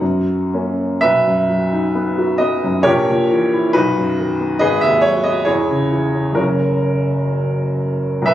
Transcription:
0.00 1.01 F#2 soft
0.00 0.48 F#4 medium
0.00 0.48 D#5 medium
0.00 0.51 F#5 medium
0.54 1.00 A#3 soft
0.54 1.00 C#4 soft
1.01 2.82 B1 medium
1.01 2.36 B4 medium
1.01 2.39 E5 loud
1.27 1.63 F#2 soft
1.50 1.86 F#3 soft
1.73 2.08 D#4 soft
1.95 2.31 B3 medium
2.18 2.54 F#4 soft
2.38 2.76 B3 medium
2.38 2.84 D#5 medium
2.64 2.86 F#2 medium
2.83 3.72 A#1 medium
2.83 3.70 G4 medium
2.83 3.70 A#4 medium
2.83 3.73 C#5 loud
3.08 3.44 A#2 medium
3.31 3.66 E3 medium
3.53 3.75 E4 medium
3.73 4.59 B1 medium
3.73 4.57 D#4 medium
3.73 4.57 F#4 medium
3.73 4.59 B4 loud
3.98 4.32 F#2 medium
4.19 4.53 D#3 medium
4.41 4.61 B3 medium
4.59 5.45 G#1 medium
4.59 4.81 G#4 medium
4.59 4.80 B4 loud
4.59 4.81 D#5 loud
4.81 5.17 D#2 medium
4.81 5.03 E5 loud
5.01 5.38 F#3 medium
5.01 5.24 C#5 loud
5.24 5.47 B3 medium
5.24 5.46 D#5 loud
5.45 6.36 E2 medium
5.45 6.34 E4 medium
5.45 6.34 G#4 medium
5.45 6.37 C#5 loud
5.69 6.05 C#3 soft
5.92 6.29 E3 soft
6.15 6.35 C#4 soft
6.32 8.22 F#2 medium
6.32 8.22 C#3 soft
6.32 8.23 F#3 soft
6.32 7.76 C#4 medium
6.32 7.79 A#4 medium
6.36 8.24 F#1 soft
6.36 7.76 F#4 medium
8.22 8.34 B1 medium
8.22 8.34 E5 loud
8.27 8.34 B4 medium

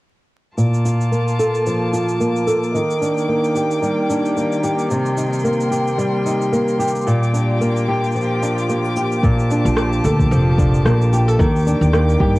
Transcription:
0.57 2.74 A#2 medium
0.57 7.03 A#3 medium
0.57 2.72 F4 medium
0.57 2.72 A5 medium
0.57 4.87 D6 medium
0.57 shaker soft
0.74 shaker soft
0.85 1.92 F4 medium
0.85 shaker medium
1.01 shaker soft
1.12 2.20 A#3 medium
1.12 shaker soft
1.28 shaker soft
1.39 2.46 A4 medium
1.39 shaker medium
1.55 shaker soft
1.67 2.81 F3 medium
1.67 shaker soft
1.93 2.80 F4 medium
1.93 shaker medium
2.09 shaker soft
2.20 3.28 A#3 medium
2.20 shaker soft
2.36 shaker soft
2.47 2.80 A4 medium
2.47 shaker medium
2.63 shaker soft
2.74 4.90 D#3 medium
2.74 7.03 D#3 medium
2.74 4.89 G5 medium
2.74 shaker soft
2.91 shaker soft
3.01 4.08 D4 medium
3.01 shaker medium
3.18 shaker soft
3.28 4.36 A#3 medium
3.44 shaker soft
3.55 4.63 G4 medium
3.55 shaker medium
3.71 shaker soft
3.82 5.97 G3 medium
3.82 shaker soft
4.09 4.97 D4 medium
4.09 shaker medium
4.25 shaker soft
4.37 5.44 A#3 medium
4.37 shaker soft
4.52 shaker soft
4.64 5.70 G4 medium
4.64 shaker medium
4.79 shaker soft
4.90 7.07 C3 medium
4.90 7.04 G5 medium
4.90 7.04 C6 medium
4.90 shaker soft
5.06 shaker soft
5.17 6.24 D#4 medium
5.17 shaker medium
5.33 shaker soft
5.39 shaker soft
5.44 6.52 A#3 medium
5.44 shaker soft
5.53 shaker soft
5.61 shaker soft
5.71 6.79 G4 medium
5.71 shaker medium
5.87 shaker soft
5.98 8.15 G3 medium
5.98 shaker soft
6.26 7.13 D#4 soft
6.26 shaker medium
6.42 shaker soft
6.52 7.60 A#3 medium
6.52 shaker soft
6.68 shaker soft
6.79 7.88 G4 medium
6.79 shaker medium
6.88 shaker medium
6.96 shaker soft
7.01 shaker soft
7.07 9.23 A#2 medium
7.07 9.21 A#3 medium
7.07 11.35 F4 medium
7.07 12.39 G4 medium
7.07 9.21 G5 medium
7.07 11.35 D6 medium
7.07 shaker soft
7.23 shaker soft
7.34 8.42 D4 medium
7.34 shaker medium
7.61 8.69 A#3 medium
7.61 shaker soft
7.77 shaker soft
7.88 8.95 G4 medium
8.04 shaker soft
8.12 10.31 F3 medium
8.12 shaker soft
8.16 shaker soft
8.21 shaker soft
8.42 9.51 D4 medium
8.42 shaker medium
8.58 shaker soft
8.69 9.77 A#3 medium
8.69 shaker soft
8.85 shaker soft
8.97 9.29 G4 medium
8.97 shaker medium
9.12 shaker soft
9.23 11.40 A#2 medium
9.23 11.37 A5 medium
9.23 kick loud
9.23 shaker soft
9.39 shaker soft
9.51 10.58 D4 medium
9.51 shaker medium
9.65 9.99 A#1 medium
9.65 shaker soft
9.77 10.85 A#3 medium
9.77 cross-stick medium
9.77 shaker soft
9.93 shaker soft
10.04 10.25 D2 medium
10.04 11.12 A4 medium
10.04 shaker medium
10.19 kick medium
10.19 shaker soft
10.31 10.80 F1 medium
10.31 11.46 F3 medium
10.31 shaker soft
10.58 11.66 D4 medium
10.58 kick loud
10.58 shaker medium
10.74 shaker soft
10.85 11.34 A#1 medium
10.85 11.93 A#3 medium
10.85 cross-stick medium
10.85 shaker soft
11.02 shaker soft
11.13 11.28 G4 medium
11.13 shaker medium
11.28 11.46 A4 soft
11.28 shaker soft
11.39 11.75 D#2 medium
11.39 12.39 D#3 medium
11.39 12.39 G5 medium
11.39 12.39 D6 medium
11.39 kick loud
11.39 shaker soft
11.56 shaker soft
11.59 shaker soft
11.62 shaker soft
11.65 12.39 D4 medium
11.65 shaker soft
11.67 shaker medium
11.81 12.15 D#2 medium
11.81 shaker soft
11.93 12.39 A#3 medium
11.93 cross-stick medium
11.93 shaker soft
12.09 shaker soft
12.20 12.39 G2 medium
12.20 12.39 G4 medium
12.20 kick medium
12.36 shaker soft

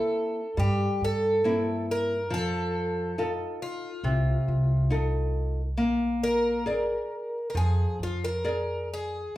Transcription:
0.00 0.40 A#3 soft
0.00 0.40 C4 soft
0.00 0.40 E4 soft
0.00 0.59 A4 medium
0.57 0.86 G2 medium
0.57 1.42 G3 medium
0.57 1.04 G4 medium
1.01 2.30 G2 medium
1.01 1.85 A4 medium
1.44 2.13 A#3 soft
1.44 2.14 C4 soft
1.44 2.14 E4 soft
1.91 2.33 A#4 medium
2.30 3.43 F2 medium
2.30 3.15 F3 medium
2.30 3.62 A4 medium
3.18 3.87 D#4 soft
3.18 3.87 F4 soft
3.18 3.88 A4 soft
3.62 4.88 F4 medium
4.04 4.32 C2 medium
4.04 4.89 C3 medium
4.48 5.77 C2 medium
4.90 5.60 D#4 soft
4.90 5.60 F4 soft
4.90 5.61 A4 soft
5.77 6.92 A#1 medium
5.77 6.63 A#3 medium
6.23 7.49 A#4 medium
6.66 7.37 G#4 soft
6.66 7.38 A#4 soft
6.66 7.38 D5 soft
7.50 7.56 A#4 medium
7.55 7.84 F2 medium
7.55 8.42 F3 soft
7.55 7.98 G#4 medium
7.99 9.36 F2 medium
7.99 8.22 F4 medium
8.24 8.88 A#4 medium
8.44 9.17 G#4 soft
8.44 9.17 A#4 soft
8.44 9.18 D5 soft
8.94 9.34 G#4 medium

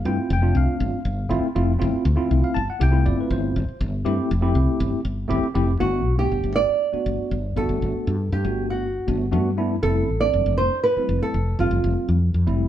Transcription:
0.05 0.16 G2 medium
0.05 0.29 A3 medium
0.05 0.29 C4 medium
0.05 0.29 E4 medium
0.05 0.30 F4 medium
0.05 0.30 G5 medium
0.30 0.52 F1 medium
0.30 0.56 G5 medium
0.42 0.99 A3 medium
0.42 0.99 C4 medium
0.42 0.99 D4 medium
0.42 0.99 F4 medium
0.55 0.66 C2 medium
0.55 1.27 F5 medium
0.80 0.91 G1 medium
1.05 1.27 G1 medium
1.29 1.41 G1 medium
1.29 1.46 A3 loud
1.29 1.46 C4 loud
1.29 1.46 E4 medium
1.29 1.46 F4 loud
1.43 muted fretless electric bass stroke soft
1.55 1.77 F1 medium
1.55 1.71 A3 medium
1.55 1.71 C4 medium
1.55 1.72 E4 medium
1.55 1.72 F4 loud
1.79 1.92 G1 loud
1.79 2.04 A3 medium
1.79 2.04 C4 medium
1.79 2.04 E4 medium
1.79 2.04 F4 medium
2.05 2.16 D2 medium
2.16 2.57 A3 medium
2.16 2.58 C4 medium
2.16 2.58 E4 medium
2.16 2.58 F4 loud
2.16 muted fretless electric bass stroke soft
2.31 2.42 C2 medium
2.44 2.56 F5 medium
2.44 muted fretless electric bass stroke soft
2.54 2.67 G1 medium
2.54 2.67 A5 loud
2.70 2.81 F#5 medium
2.79 3.07 C2 loud
2.79 2.88 A3 medium
2.79 2.88 C4 medium
2.79 2.88 E4 medium
2.79 2.89 G4 medium
2.79 3.06 G5 loud
2.91 3.57 A3 medium
2.91 3.57 C4 medium
2.91 3.57 E4 medium
2.91 3.57 F4 medium
3.06 3.17 G1 medium
3.06 3.18 D5 medium
3.21 3.32 B4 medium
3.31 3.52 G1 loud
3.31 3.78 C5 medium
3.56 3.67 G1 medium
3.68 muted fretless electric bass stroke soft
3.81 4.02 G1 loud
4.05 4.17 G2 medium
4.05 4.30 A3 loud
4.05 4.30 C4 medium
4.05 4.30 E4 medium
4.05 4.30 G4 loud
4.31 4.53 F1 loud
4.41 4.99 A3 medium
4.41 4.99 C4 medium
4.41 4.99 E4 medium
4.41 5.00 G4 loud
4.55 4.66 C2 medium
4.80 4.91 G1 medium
5.05 5.27 G1 medium
5.28 5.42 G1 medium
5.28 5.46 A3 loud
5.28 5.46 C4 loud
5.28 5.46 E4 medium
5.28 5.47 G4 loud
5.43 muted fretless electric bass stroke soft
5.54 5.77 F1 medium
5.54 5.72 A3 medium
5.54 5.72 C4 medium
5.54 5.72 E4 medium
5.54 5.72 G4 loud
5.79 6.06 G1 medium
5.79 6.05 A3 medium
5.79 6.05 B3 medium
5.79 6.05 D4 medium
5.79 6.18 F#4 medium
5.79 6.05 F#4 medium
6.06 6.28 B1 medium
6.18 6.67 A3 medium
6.18 6.67 B3 medium
6.18 6.67 D4 medium
6.18 6.67 G4 medium
6.18 6.55 G4 medium
6.32 6.43 G1 medium
6.44 6.66 G1 medium
6.56 7.60 D5 medium
6.92 7.34 A3 medium
6.92 7.34 B3 medium
6.92 7.34 D4 medium
6.92 7.34 F#4 medium
6.92 muted fretless electric bass stroke soft
7.06 7.17 G1 medium
7.31 7.53 G1 medium
7.56 7.68 G1 medium
7.56 8.13 A3 medium
7.56 8.14 B3 medium
7.56 8.14 D4 medium
7.56 8.14 F#4 medium
7.56 8.32 A4 medium
7.69 7.80 G1 medium
7.82 7.93 G1 medium
8.07 8.29 G2 medium
8.32 8.43 G2 medium
8.32 8.70 G4 medium
8.44 8.99 G1 medium
8.44 8.85 A3 medium
8.44 8.86 B3 medium
8.44 8.86 D4 medium
8.44 8.86 F#4 medium
8.70 9.17 F#4 medium
9.07 9.34 G1 medium
9.07 9.24 A3 medium
9.07 9.24 B3 medium
9.07 9.24 D4 medium
9.07 9.24 F#4 medium
9.32 9.76 G2 medium
9.32 9.49 A3 medium
9.32 9.49 B3 medium
9.32 9.49 D4 medium
9.32 9.49 F#4 loud
9.57 9.74 A3 medium
9.57 9.75 B3 medium
9.57 9.74 D4 medium
9.57 9.74 E4 loud
9.83 10.09 F1 medium
9.83 10.08 G3 medium
9.83 10.08 A3 medium
9.83 10.08 C4 medium
9.83 10.09 E4 medium
9.83 10.22 A4 medium
10.09 10.30 A1 medium
10.21 10.69 G3 medium
10.21 10.70 A3 medium
10.21 10.70 C4 medium
10.21 10.70 D4 medium
10.21 10.57 D5 medium
10.33 10.44 F1 medium
10.46 10.68 F1 medium
10.58 10.82 C5 medium
10.84 11.23 B4 medium
10.96 11.37 G3 medium
10.96 11.37 A3 medium
10.96 11.37 C4 medium
10.96 11.38 E4 medium
10.96 muted fretless electric bass stroke soft
11.09 11.20 F1 medium
11.23 11.61 A4 medium
11.34 11.56 F1 medium
11.59 11.70 F1 medium
11.59 12.16 G3 medium
11.59 12.16 A3 medium
11.59 12.16 C4 medium
11.59 12.16 F4 medium
11.59 12.06 F4 medium
11.71 11.82 F1 medium
11.84 11.95 F1 medium
12.09 12.31 F2 medium
12.34 12.45 F2 medium
12.47 12.68 F1 medium
12.47 12.68 G3 medium
12.47 12.68 A3 medium
12.47 12.68 C4 medium
12.47 12.68 E4 medium

